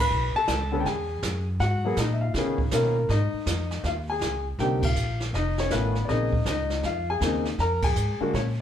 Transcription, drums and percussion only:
0.11 brush sweep
0.48 kick, snare, hi-hat pedal
0.85 brush sweep, kick, snare
1.22 kick, snare, hi-hat pedal
1.60 brush sweep, kick, snare
1.97 kick, snare, hi-hat pedal
2.34 brush sweep, kick, snare
2.58 kick
2.71 kick, snare, hi-hat pedal
3.09 brush sweep, kick, snare
3.46 kick, snare, hi-hat pedal
3.71 snare
3.84 brush sweep, kick, snare
4.21 kick, snare, hi-hat pedal
4.59 brush sweep, kick, snare
4.82 kick, ride
4.96 hi-hat pedal
5.20 snare
5.33 brush sweep, kick, snare
5.58 snare
5.70 kick, snare, hi-hat pedal
5.95 snare
6.08 brush sweep, kick, snare
6.32 kick
6.46 kick, snare, hi-hat pedal
6.70 snare
6.83 brush sweep, kick, snare
7.21 kick, snare, hi-hat pedal
7.45 snare
7.58 brush sweep, kick, snare
7.82 kick, ride
7.96 hi-hat pedal
8.34 brush sweep, kick, snare

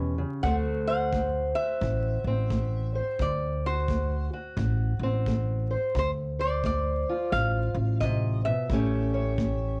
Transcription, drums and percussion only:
0.44 kick
1.13 kick
1.81 kick
2.50 kick
3.19 kick
3.88 kick
4.57 kick
5.26 kick
5.95 kick
6.64 kick
7.33 kick
8.01 kick
8.70 kick
9.38 kick

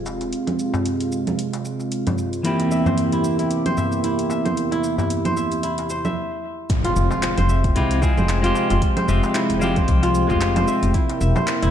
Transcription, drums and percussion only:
0.06 darbuka ka, darbuka tek, shaker
0.21 closed hi-hat, darbuka ka, shaker
0.33 closed hi-hat, shaker
0.47 closed hi-hat, darbuka ka, low conga
0.59 shaker
0.74 darbuka tek, darbuka dum, shaker
0.86 closed hi-hat, shaker
1.00 closed hi-hat, shaker
1.12 shaker
1.27 closed hi-hat, low conga, shaker
1.39 closed hi-hat, shaker
1.53 closed hi-hat, darbuka tek, shaker
1.65 darbuka ka, shaker
1.79 darbuka tek, shaker
1.92 closed hi-hat, shaker
2.07 closed hi-hat, darbuka ka, darbuka tek, low conga, darbuka dum, shaker
2.18 shaker
2.33 closed hi-hat, shaker
2.45 closed hi-hat, shaker
2.60 closed hi-hat, darbuka ka
2.71 shaker
2.86 darbuka tek, darbuka dum, low conga, shaker
2.98 closed hi-hat, shaker
3.12 closed hi-hat, shaker
3.24 shaker
3.39 closed hi-hat, shaker
3.51 closed hi-hat, shaker
3.66 closed hi-hat, low conga, shaker
3.77 darbuka tek, darbuka dum, shaker
3.92 shaker
4.04 closed hi-hat, shaker
4.19 closed hi-hat, shaker
4.30 darbuka ka, darbuka tek, shaker
4.46 closed hi-hat, darbuka ka, low conga, shaker
4.57 closed hi-hat, shaker
4.71 closed hi-hat, darbuka ka
4.84 shaker
4.98 darbuka tek, darbuka dum, shaker
5.10 closed hi-hat, shaker
5.25 closed hi-hat, low conga, shaker
5.37 shaker
5.52 closed hi-hat, shaker
5.63 closed hi-hat, shaker
5.78 closed hi-hat, darbuka tek, shaker
5.90 darbuka ka, shaker
6.05 darbuka tek, low conga, shaker
6.70 kick, closed hi-hat, shaker
6.85 closed hi-hat, darbuka ka
6.96 shaker
7.11 darbuka tek, shaker
7.23 clap, closed hi-hat, shaker
7.38 closed hi-hat, low conga, shaker
7.49 shaker
7.64 kick, closed hi-hat, shaker
7.76 kick, closed hi-hat, shaker
7.91 closed hi-hat, shaker
8.02 kick, darbuka tek, shaker
8.18 low conga, shaker
8.29 clap, closed hi-hat, shaker
8.44 closed hi-hat, shaker
8.55 darbuka ka, darbuka tek, shaker
8.70 closed hi-hat, darbuka ka, shaker
8.82 kick, closed hi-hat, shaker
8.97 closed hi-hat, darbuka ka, low conga
9.08 shaker
9.23 darbuka tek, shaker
9.35 clap, closed hi-hat, shaker
9.50 closed hi-hat, shaker
9.62 shaker
9.76 kick, closed hi-hat, low conga, shaker
9.88 kick, closed hi-hat, shaker
10.03 closed hi-hat, darbuka tek, shaker
10.15 darbuka ka, shaker
10.29 kick, darbuka tek, shaker
10.41 clap, closed hi-hat, shaker
10.56 closed hi-hat, darbuka ka, darbuka tek, low conga, shaker
10.68 shaker
10.83 closed hi-hat, shaker
10.94 kick, closed hi-hat, shaker
11.10 closed hi-hat, darbuka ka
11.21 shaker
11.36 darbuka tek, low conga, shaker
11.47 clap, closed hi-hat, shaker
11.63 closed hi-hat, shaker

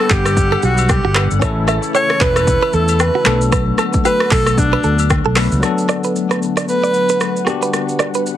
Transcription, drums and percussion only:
0.10 kick, clap, shaker
0.25 cross-stick, high agogo, shaker
0.37 kick, shaker
0.52 high agogo
0.62 shaker
0.78 high agogo, shaker
0.89 kick, cross-stick, low woodblock, shaker
1.15 cross-stick, clap, high agogo, shaker
1.31 shaker
1.42 kick, cross-stick, high agogo, shaker
1.68 cross-stick, high agogo, shaker
1.83 shaker
1.95 high agogo, low woodblock, shaker
2.10 cross-stick
2.21 kick, clap, shaker
2.36 cross-stick, high agogo, shaker
2.47 kick, shaker
2.63 high agogo
2.73 shaker
2.88 high agogo, shaker
2.99 cross-stick, low woodblock, shaker
3.26 cross-stick, clap, high agogo, shaker
3.41 shaker
3.52 kick, cross-stick, high agogo, shaker
3.78 cross-stick, high agogo, shaker
3.93 kick, shaker
4.05 high agogo, low woodblock, shaker
4.20 cross-stick
4.31 kick, clap, open hi-hat, shaker
4.46 cross-stick, high agogo, shaker
4.58 kick, shaker
4.73 high agogo
4.83 shaker
4.99 high agogo, shaker
5.10 kick, cross-stick, low woodblock, shaker
5.36 cross-stick, clap, open hi-hat, high agogo, shaker
5.52 shaker
5.63 cross-stick, shaker
5.78 shaker
5.89 cross-stick, shaker
6.04 shaker
6.16 shaker
6.31 cross-stick, shaker
6.42 shaker
6.57 cross-stick, shaker
6.68 shaker
6.84 shaker
6.94 shaker
7.09 shaker
7.20 cross-stick, shaker
7.36 shaker
7.47 cross-stick, shaker
7.62 shaker
7.73 cross-stick, shaker
7.89 shaker
7.99 cross-stick, shaker
8.14 shaker
8.26 shaker

